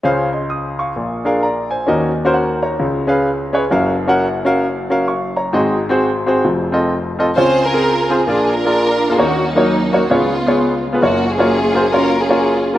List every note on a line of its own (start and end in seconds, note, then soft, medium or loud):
0.03 0.92 C#2 medium
0.03 0.92 C#3 medium
0.03 0.27 C#4 medium
0.03 0.27 G#4 medium
0.03 0.28 C5 medium
0.03 0.28 F5 medium
0.33 0.50 D#5 soft
0.33 0.49 C6 medium
0.50 0.77 D#6 medium
0.79 1.23 F5 medium
0.79 1.22 C#6 medium
0.96 1.84 A#1 medium
0.96 1.84 A#2 medium
1.25 1.44 D4 medium
1.25 1.44 G#4 medium
1.25 1.45 A#4 medium
1.25 1.43 F5 medium
1.43 1.70 D5 medium
1.43 1.69 A#5 medium
1.71 2.14 C5 medium
1.71 2.14 G#5 medium
1.87 2.75 D#2 medium
1.87 2.75 D#3 medium
1.87 2.10 C#4 medium
1.87 2.11 F#4 medium
1.87 2.11 A#4 medium
1.87 2.11 D#5 medium
2.25 2.42 C#4 medium
2.25 2.42 F#4 medium
2.25 2.33 A#4 medium
2.25 2.34 C5 medium
2.34 2.61 A#4 medium
2.34 2.61 F#5 medium
2.62 3.06 C#5 medium
2.62 3.06 A#5 medium
2.80 3.67 C#2 medium
2.80 3.67 C#3 medium
3.07 3.27 C#4 medium
3.07 3.27 G#4 medium
3.07 3.28 B4 medium
3.07 3.28 F5 medium
3.53 3.63 C#4 medium
3.53 3.63 G#4 medium
3.53 3.63 B4 medium
3.53 3.63 C#5 medium
3.70 5.50 F#1 medium
3.70 5.50 F#2 medium
3.70 3.94 C#4 medium
3.70 3.94 F#4 medium
3.70 3.94 A#4 medium
3.70 3.95 F5 medium
4.08 4.25 C#4 medium
4.08 4.25 F#4 medium
4.08 4.26 A#4 medium
4.08 4.26 F#5 medium
4.45 4.64 C#4 medium
4.45 4.65 F#4 medium
4.45 4.65 A#4 medium
4.45 4.65 F5 medium
4.90 5.10 C#4 medium
4.90 5.10 F#4 medium
4.90 5.11 A#4 medium
4.90 5.07 F5 medium
5.08 5.35 F5 medium
5.08 5.35 C#6 medium
5.36 5.80 C#5 medium
5.36 5.80 A#5 medium
5.53 6.41 G#1 medium
5.53 6.41 G#2 medium
5.53 5.76 C4 medium
5.53 5.77 F#4 medium
5.53 5.77 G#4 medium
5.53 5.77 D#5 medium
5.89 6.08 C4 medium
5.89 6.08 F#4 medium
5.89 6.08 G#4 medium
5.89 6.08 C5 medium
6.26 6.44 C4 medium
6.26 6.44 F#4 medium
6.26 6.45 G#4 medium
6.26 6.45 C5 medium
6.45 7.32 F1 medium
6.45 7.32 F2 medium
6.72 6.92 C4 medium
6.72 6.93 F4 medium
6.72 6.93 A4 medium
6.72 6.93 D#5 medium
7.19 7.28 C4 medium
7.19 7.28 F4 medium
7.19 7.29 A4 medium
7.19 7.29 D#5 medium
7.36 8.24 C#2 medium
7.36 8.24 C#3 medium
7.36 7.59 C4 medium
7.36 7.64 F4 medium
7.36 7.60 F4 medium
7.36 8.07 G#4 medium
7.36 7.60 G#4 medium
7.36 7.63 C5 loud
7.36 7.60 C#5 medium
7.65 8.24 F4 medium
7.65 8.10 A#4 loud
7.73 7.91 C4 medium
7.73 7.91 F4 medium
7.73 7.91 G#4 medium
7.73 7.91 A#4 medium
8.09 8.19 C4 medium
8.09 8.20 F4 medium
8.09 8.25 G#4 medium
8.09 8.20 G#4 medium
8.09 8.20 C5 medium
8.26 9.15 A#1 medium
8.26 9.15 A#2 medium
8.26 8.51 A#3 medium
8.26 8.55 D4 medium
8.26 8.55 F4 medium
8.26 8.51 F4 medium
8.26 8.53 G#4 medium
8.26 8.51 G#4 medium
8.26 8.51 D5 medium
8.54 9.15 D4 medium
8.54 9.15 F4 medium
8.54 9.18 A#4 loud
8.65 8.90 A#3 medium
8.65 8.90 F4 medium
8.65 8.91 G#4 medium
8.65 8.91 D5 medium
9.10 9.15 A#3 medium
9.10 9.15 F4 medium
9.10 9.15 G#4 medium
9.10 9.15 F5 medium
9.18 10.06 D#2 medium
9.18 10.06 D#3 medium
9.18 9.41 A#3 medium
9.18 9.47 A#3 medium
9.18 10.06 C#4 medium
9.18 9.42 D#4 medium
9.18 9.47 F#4 medium
9.18 9.42 F#4 medium
9.18 9.42 C#5 medium
9.46 10.06 F#3 medium
9.46 10.07 A#3 medium
9.46 9.92 D#4 medium
9.56 9.73 A#3 medium
9.56 9.74 D#4 medium
9.56 9.74 F#4 medium
9.56 9.74 C#5 medium
9.92 10.02 A#3 medium
9.92 10.02 D#4 medium
9.92 10.09 F#4 medium
9.92 10.03 F#4 medium
9.92 10.03 C#5 medium
10.09 10.98 C#2 medium
10.09 10.97 C#3 medium
10.09 10.97 G#3 medium
10.09 10.33 B3 medium
10.09 10.97 B3 medium
10.09 10.83 F4 medium
10.09 10.33 F4 medium
10.09 10.34 G#4 medium
10.09 10.34 C#5 medium
10.47 10.72 B3 medium
10.47 10.72 F4 medium
10.47 10.73 G#4 medium
10.47 10.73 C#5 medium
10.93 10.97 B3 medium
10.93 10.97 F4 medium
10.93 10.98 G#4 medium
10.93 10.98 B4 medium
11.00 12.78 F#1 medium
11.00 12.78 F#2 medium
11.00 11.88 A#3 medium
11.00 11.24 A#3 medium
11.00 11.29 C#4 medium
11.00 11.25 F4 medium
11.00 11.27 F#4 medium
11.00 11.25 F#4 medium
11.00 11.25 C#5 medium
11.29 11.92 C#4 medium
11.29 11.92 F4 medium
11.29 11.92 G#4 medium
11.38 11.56 A#3 medium
11.38 11.56 F4 medium
11.38 11.56 F#4 medium
11.38 11.57 C#5 medium
11.74 11.84 A#3 medium
11.74 11.84 F4 medium
11.74 11.85 F#4 medium
11.74 11.85 C5 medium
11.93 12.15 A#3 medium
11.93 12.20 C#4 medium
11.93 12.15 F4 medium
11.93 12.20 F4 medium
11.93 12.16 F#4 medium
11.93 12.21 A#4 loud
11.93 12.16 C#5 medium
12.21 12.78 C#4 medium
12.21 12.78 F4 medium
12.21 12.66 G#4 medium
12.29 12.54 A#3 medium
12.29 12.54 F4 medium
12.29 12.55 F#4 medium
12.29 12.55 C#5 medium
12.74 12.78 A#3 medium
12.74 12.78 F4 medium